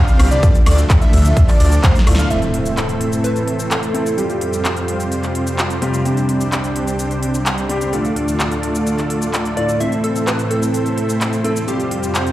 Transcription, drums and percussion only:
0.08 closed hi-hat, shaker
0.19 open hi-hat, ride, high woodblock
0.31 closed hi-hat, shaker
0.43 kick, closed hi-hat, ride, shaker
0.55 closed hi-hat, shaker
0.66 open hi-hat, ride, high woodblock
0.78 closed hi-hat, shaker
0.90 kick, clap, closed hi-hat, ride, shaker
1.01 closed hi-hat, shaker
1.13 open hi-hat, ride
1.25 closed hi-hat, shaker
1.37 kick, closed hi-hat, ride, shaker
1.48 clap, open hi-hat, shaker
1.60 open hi-hat, ride
1.72 closed hi-hat, shaker
1.84 kick, snare, clap, closed hi-hat, ride, shaker
1.95 snare, closed hi-hat, shaker
2.07 open hi-hat, ride, high woodblock
2.15 snare, closed hi-hat
2.19 shaker
2.30 closed hi-hat, shaker
2.42 closed hi-hat, shaker
2.54 closed hi-hat
2.66 closed hi-hat, shaker
2.77 clap, closed hi-hat, shaker
2.89 closed hi-hat, shaker
3.01 closed hi-hat
3.12 closed hi-hat, shaker
3.24 closed hi-hat, shaker
3.36 closed hi-hat, shaker
3.48 closed hi-hat
3.59 closed hi-hat, shaker
3.71 clap, closed hi-hat, shaker
3.83 closed hi-hat, shaker
3.94 closed hi-hat
4.06 closed hi-hat, shaker
4.18 closed hi-hat, shaker
4.30 closed hi-hat, shaker
4.41 closed hi-hat
4.53 closed hi-hat, shaker
4.65 clap, closed hi-hat, shaker
4.77 closed hi-hat, shaker
4.88 closed hi-hat
5.00 closed hi-hat, shaker
5.12 closed hi-hat, shaker
5.23 clap, closed hi-hat, shaker
5.35 closed hi-hat
5.47 closed hi-hat, shaker
5.59 clap, closed hi-hat, shaker
5.70 closed hi-hat, shaker
5.82 closed hi-hat
5.94 closed hi-hat, shaker
6.05 closed hi-hat, shaker
6.17 closed hi-hat, shaker
6.29 closed hi-hat
6.41 closed hi-hat, shaker
6.52 clap, closed hi-hat, shaker
6.64 closed hi-hat, shaker
6.76 closed hi-hat
6.87 closed hi-hat, shaker
6.99 closed hi-hat, shaker
7.11 closed hi-hat, shaker
7.23 closed hi-hat
7.34 closed hi-hat, shaker
7.46 clap, closed hi-hat, shaker
7.58 closed hi-hat, shaker
7.69 closed hi-hat
7.81 closed hi-hat, shaker
7.93 closed hi-hat, shaker
8.05 closed hi-hat, shaker
8.16 closed hi-hat
8.28 closed hi-hat, shaker
8.40 clap, closed hi-hat, shaker
8.52 closed hi-hat, shaker
8.63 closed hi-hat
8.75 closed hi-hat, shaker
8.87 closed hi-hat, shaker
8.98 clap, closed hi-hat, shaker
9.10 closed hi-hat
9.22 closed hi-hat, shaker
9.34 clap, closed hi-hat, shaker
9.45 closed hi-hat, shaker
9.57 closed hi-hat
9.69 closed hi-hat, shaker
9.80 closed hi-hat, shaker
9.92 closed hi-hat, shaker
10.04 closed hi-hat
10.16 closed hi-hat, shaker
10.27 clap, closed hi-hat, shaker
10.39 closed hi-hat, shaker
10.51 closed hi-hat
10.62 closed hi-hat, shaker
10.74 closed hi-hat, shaker
10.86 closed hi-hat, shaker
10.98 closed hi-hat
11.09 closed hi-hat, shaker
11.21 clap, closed hi-hat, shaker
11.33 closed hi-hat, shaker
11.44 closed hi-hat
11.56 closed hi-hat, shaker
11.68 closed hi-hat, shaker
11.80 closed hi-hat, shaker
11.91 closed hi-hat
12.03 closed hi-hat, shaker
12.15 clap, closed hi-hat, shaker
12.27 closed hi-hat, shaker

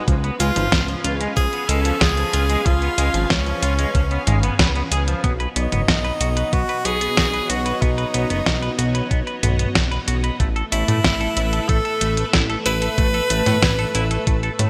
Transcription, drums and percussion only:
0.08 kick, closed hi-hat
0.24 closed hi-hat
0.40 closed hi-hat
0.56 closed hi-hat, mid tom
0.72 kick, snare, closed hi-hat
0.88 closed hi-hat
1.04 closed hi-hat
1.21 closed hi-hat
1.37 kick, closed hi-hat
1.53 closed hi-hat
1.69 closed hi-hat
1.85 closed hi-hat
2.01 kick, snare, closed hi-hat
2.17 closed hi-hat
2.33 closed hi-hat
2.50 closed hi-hat
2.66 kick, closed hi-hat
2.82 closed hi-hat
2.98 closed hi-hat
3.14 closed hi-hat
3.30 kick, snare, closed hi-hat
3.46 closed hi-hat
3.62 closed hi-hat
3.79 closed hi-hat
3.95 kick, closed hi-hat
4.11 closed hi-hat
4.27 closed hi-hat, mid tom
4.43 closed hi-hat
4.59 kick, snare, closed hi-hat
4.75 closed hi-hat
4.92 closed hi-hat
5.08 closed hi-hat
5.24 kick, closed hi-hat
5.40 closed hi-hat
5.56 closed hi-hat
5.72 closed hi-hat, mid tom
5.88 kick, snare, closed hi-hat
6.05 closed hi-hat
6.21 closed hi-hat
6.37 closed hi-hat
6.53 kick, closed hi-hat
6.69 closed hi-hat
6.85 closed hi-hat
7.01 closed hi-hat
7.17 kick, snare, closed hi-hat
7.34 closed hi-hat
7.50 closed hi-hat
7.66 closed hi-hat
7.82 kick, closed hi-hat
7.98 closed hi-hat
8.14 closed hi-hat
8.30 closed hi-hat
8.46 kick, snare, closed hi-hat
8.63 closed hi-hat
8.79 closed hi-hat
8.95 closed hi-hat
9.11 kick, closed hi-hat
9.27 closed hi-hat
9.43 closed hi-hat, mid tom
9.59 closed hi-hat
9.75 kick, snare, closed hi-hat
9.92 closed hi-hat
10.08 closed hi-hat
10.24 closed hi-hat
10.40 kick, closed hi-hat
10.56 closed hi-hat
10.72 closed hi-hat
10.88 closed hi-hat, mid tom
11.04 kick, snare, closed hi-hat
11.21 closed hi-hat
11.37 closed hi-hat
11.53 closed hi-hat
11.69 kick, closed hi-hat
11.85 closed hi-hat
12.01 closed hi-hat
12.17 closed hi-hat
12.33 kick, snare, closed hi-hat
12.50 closed hi-hat
12.66 closed hi-hat
12.82 closed hi-hat
12.98 kick, closed hi-hat
13.14 closed hi-hat
13.30 closed hi-hat
13.46 snare, closed hi-hat, mid tom
13.62 kick, snare, closed hi-hat
13.79 closed hi-hat
13.95 closed hi-hat
14.11 closed hi-hat
14.27 kick, closed hi-hat
14.43 closed hi-hat
14.59 closed hi-hat, mid tom

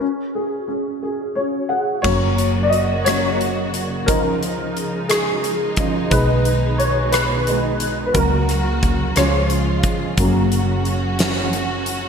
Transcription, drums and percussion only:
2.04 kick, crash
2.38 closed hi-hat
2.73 closed hi-hat
3.06 cross-stick, closed hi-hat
3.41 closed hi-hat
3.74 closed hi-hat
4.08 kick, closed hi-hat
4.43 closed hi-hat
4.77 closed hi-hat
5.10 cross-stick, closed hi-hat
5.44 closed hi-hat
5.77 kick, closed hi-hat
6.11 kick, closed hi-hat
6.45 closed hi-hat
6.80 closed hi-hat
7.13 cross-stick, closed hi-hat
7.47 closed hi-hat
7.80 closed hi-hat
8.14 kick, closed hi-hat
8.49 cross-stick, closed hi-hat
8.83 kick, closed hi-hat
9.16 cross-stick, closed hi-hat
9.50 closed hi-hat
9.83 kick, closed hi-hat
10.17 kick, closed hi-hat
10.52 closed hi-hat
10.85 closed hi-hat
11.19 snare, closed hi-hat
11.53 closed hi-hat
11.86 closed hi-hat

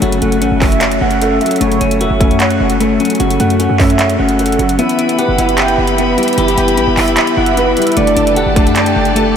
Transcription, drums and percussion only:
0.02 closed hi-hat
0.12 closed hi-hat
0.22 closed hi-hat
0.32 closed hi-hat
0.42 closed hi-hat
0.62 kick, clap, open hi-hat
0.72 closed hi-hat
0.81 clap, closed hi-hat
0.92 closed hi-hat
1.11 closed hi-hat
1.22 closed hi-hat
1.41 closed hi-hat
1.46 closed hi-hat
1.51 closed hi-hat
1.56 closed hi-hat
1.61 closed hi-hat
1.72 closed hi-hat
1.81 closed hi-hat
1.91 closed hi-hat
2.01 closed hi-hat
2.21 kick, closed hi-hat
2.31 closed hi-hat
2.40 clap, closed hi-hat
2.50 closed hi-hat
2.70 closed hi-hat
2.81 closed hi-hat
3.00 closed hi-hat
3.05 closed hi-hat
3.10 closed hi-hat
3.15 closed hi-hat
3.20 closed hi-hat
3.31 closed hi-hat
3.40 closed hi-hat
3.50 closed hi-hat
3.60 closed hi-hat
3.80 kick, clap, open hi-hat
3.90 closed hi-hat
3.99 clap, closed hi-hat
4.10 closed hi-hat
4.29 closed hi-hat
4.39 closed hi-hat
4.46 closed hi-hat
4.52 closed hi-hat
4.59 closed hi-hat
4.69 closed hi-hat
4.79 closed hi-hat
4.89 closed hi-hat
4.99 closed hi-hat
5.09 closed hi-hat
5.19 closed hi-hat
5.38 closed hi-hat
5.49 closed hi-hat
5.58 clap, closed hi-hat
5.68 closed hi-hat
5.87 closed hi-hat
5.98 closed hi-hat
6.18 closed hi-hat
6.23 closed hi-hat
6.28 closed hi-hat
6.33 closed hi-hat
6.38 closed hi-hat
6.48 closed hi-hat
6.58 closed hi-hat
6.68 closed hi-hat
6.77 closed hi-hat
6.97 clap, open hi-hat
7.08 closed hi-hat
7.17 clap, closed hi-hat
7.27 closed hi-hat
7.46 closed hi-hat
7.57 closed hi-hat
7.77 closed hi-hat
7.82 closed hi-hat
7.87 closed hi-hat
7.92 closed hi-hat
7.97 closed hi-hat
8.07 closed hi-hat
8.17 closed hi-hat
8.27 closed hi-hat
8.36 closed hi-hat
8.56 kick, closed hi-hat
8.67 closed hi-hat
8.76 clap, closed hi-hat
8.86 closed hi-hat
9.05 closed hi-hat
9.16 closed hi-hat

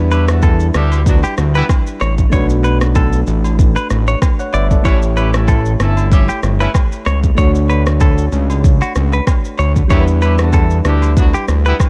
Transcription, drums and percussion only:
0.11 high agogo, shaker
0.28 cross-stick, shaker
0.42 kick, high agogo, low woodblock, shaker
0.60 shaker
0.74 cross-stick, shaker
0.92 high agogo, shaker
1.06 kick, shaker
1.23 high agogo, shaker
1.37 cross-stick, shaker
1.55 shaker
1.69 kick, cross-stick, high agogo, low woodblock, shaker
1.87 shaker
2.00 cross-stick, high agogo, shaker
2.18 kick, shaker
2.32 kick, high agogo, shaker
2.50 shaker
2.64 high agogo, shaker
2.81 cross-stick, shaker
2.95 kick, high agogo, low woodblock, shaker
3.13 shaker
3.27 shaker
3.44 high agogo, shaker
3.59 kick, shaker
3.76 high agogo, shaker
3.90 cross-stick, shaker
4.07 shaker
4.22 kick, cross-stick, high agogo, low woodblock, shaker
4.39 shaker
4.53 high agogo, shaker
4.71 kick, shaker
4.85 kick, high agogo, shaker
5.02 shaker
5.17 high agogo, shaker
5.34 cross-stick, shaker
5.48 kick, high agogo, low woodblock, shaker
5.65 shaker
5.80 cross-stick, shaker
5.97 high agogo, shaker
6.12 kick, shaker
6.28 high agogo, shaker
6.43 cross-stick, shaker
6.60 shaker
6.74 kick, cross-stick, high agogo, low woodblock, shaker
6.92 shaker
7.05 cross-stick, high agogo, shaker
7.24 kick, shaker
7.37 kick, high agogo, shaker
7.55 shaker
7.69 high agogo, shaker
7.86 cross-stick, shaker
8.00 kick, high agogo, low woodblock, shaker
8.18 shaker
8.32 shaker
8.50 high agogo, shaker
8.64 kick, shaker
8.81 high agogo, shaker
8.95 cross-stick, shaker
9.13 shaker
9.27 kick, cross-stick, high agogo, low woodblock, shaker
9.45 shaker
9.58 high agogo, shaker
9.76 kick, shaker
9.90 kick, high agogo, shaker
10.07 shaker
10.22 high agogo, shaker
10.38 cross-stick, shaker
10.53 kick, high agogo, low woodblock, shaker
10.70 shaker
10.85 cross-stick, shaker
11.02 high agogo, shaker
11.17 kick, shaker
11.33 high agogo, shaker
11.48 cross-stick, shaker
11.66 shaker
11.79 kick, cross-stick, high agogo, low woodblock, shaker

